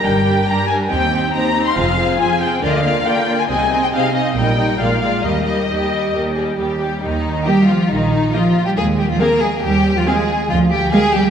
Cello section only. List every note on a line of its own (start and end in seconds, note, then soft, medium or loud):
0.05 0.43 G2 medium
0.47 0.85 G2 medium
0.90 1.28 D#2 medium
1.34 1.71 D#2 medium
1.76 2.14 F2 medium
2.19 2.57 F2 medium
2.62 3.00 D3 medium
3.05 3.44 D3 soft
3.49 3.87 C3 medium
3.92 4.30 C3 medium
4.36 4.74 A#2 medium
4.79 5.18 A#2 soft
5.23 5.63 D#2 soft
5.69 6.08 D#2 soft
6.13 6.53 D#2 soft
6.58 6.97 D#2 soft
7.03 7.43 D#3 medium
7.46 7.68 G3 medium
7.68 7.90 F3 medium
7.90 8.32 D#3 medium
8.34 8.65 F3 medium
8.66 8.77 G3 medium
8.77 8.98 G#3 medium
8.99 9.10 G3 medium
9.10 9.20 F3 medium
9.21 9.42 A#3 medium
9.42 9.50 G#3 soft
9.64 9.95 G3 medium
9.96 10.00 F3 medium
10.07 10.49 G#3 medium
10.50 10.71 F3 medium
10.71 10.79 G3 medium
10.92 11.00 G#3 medium
11.14 11.30 G3 medium